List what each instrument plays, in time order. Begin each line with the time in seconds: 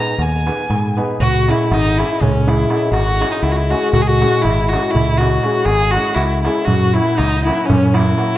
0.00 violin A#5
0.18 fingered electric bass D#2, violin G#5, darbuka tek
0.33 darbuka tek
0.45 hammered dulcimer B3 D#4 G#4 B4, darbuka tek
0.70 fingered electric bass G#2, darbuka tek, darbuka dum
0.97 hammered dulcimer B3 D#4 G#4 B4, darbuka tek
1.10 darbuka tek
1.20 fingered electric bass C#2, violin F#4, clarinet F#4, darbuka dum
1.47 hammered dulcimer G#3 C#4 E4 G#4, clarinet E4, violin E4, darbuka tek
1.71 fingered electric bass G#1, clarinet D#4, violin D#4, darbuka tek
1.98 hammered dulcimer G#3 C#4 E4 G#4, violin E4, clarinet E4, darbuka tek
2.21 fingered electric bass C#2, clarinet C#4, violin C#4, darbuka dum
2.46 hammered dulcimer G#3 C#4 E4 G#4, clarinet E4, violin E4, darbuka tek
2.69 hammered dulcimer G#3 C#4 E4 G#4, darbuka tek
2.82 darbuka tek
2.92 fingered electric bass G#1, clarinet F#4, violin F#4, darbuka tek
3.07 darbuka tek
3.20 hammered dulcimer G#3 C#4 E4 G#4, darbuka tek
3.32 clarinet D#4, violin D#4
3.43 fingered electric bass C#2, violin E4, clarinet E4, darbuka tek
3.52 violin F#4, clarinet F#4
3.56 violin E4, clarinet E4
3.70 hammered dulcimer G#3 C#4 E4 G#4, violin F#4, clarinet F#4, darbuka tek
3.83 darbuka tek
3.93 fingered electric bass C#2, violin F#4, clarinet F#4, darbuka dum
4.02 violin G#4, clarinet G#4
4.07 violin F#4, clarinet F#4
4.21 hammered dulcimer G#3 C#4 E4 G#4, darbuka tek
4.42 fingered electric bass G#1, violin E4, clarinet E4, darbuka tek
4.69 hammered dulcimer G#3, violin F#4, clarinet F#4, darbuka tek
4.73 hammered dulcimer C#4 E4 G#4
4.91 violin E4
4.95 fingered electric bass C#2, clarinet E4, darbuka dum
5.18 hammered dulcimer G#3 C#4 E4, violin F#4, clarinet F#4, darbuka tek
5.23 hammered dulcimer G#4
5.43 hammered dulcimer G#3 C#4 E4 G#4, darbuka tek
5.55 darbuka tek
5.64 fingered electric bass G#1, clarinet G#4, violin G#4, darbuka tek
5.80 darbuka tek
5.91 hammered dulcimer G#3 C#4, violin F#4, clarinet F#4, darbuka tek
5.95 hammered dulcimer E4 G#4
6.12 fingered electric bass C#2, violin E4 F#4, clarinet F#4
6.16 clarinet E4, darbuka tek
6.42 hammered dulcimer G#3 C#4 E4 G#4, clarinet E4, violin E4, darbuka tek
6.56 darbuka tek
6.65 fingered electric bass F#2, violin F#4, clarinet F#4, darbuka dum
6.93 hammered dulcimer F#3 A#3 C#4 F#4, clarinet E4, violin E4, darbuka tek
7.15 fingered electric bass C#2, clarinet D#4, violin D#4, darbuka tek
7.44 hammered dulcimer F#3 A#3, clarinet E4, violin E4, darbuka tek
7.48 hammered dulcimer C#4 F#4
7.66 violin C#4, clarinet C#4, darbuka dum
7.71 fingered electric bass F#2
7.94 hammered dulcimer F#3 A#3 C#4 F#4, violin E4, clarinet E4, darbuka tek
8.18 hammered dulcimer F#3 A#3 C#4 F#4, darbuka tek
8.29 darbuka tek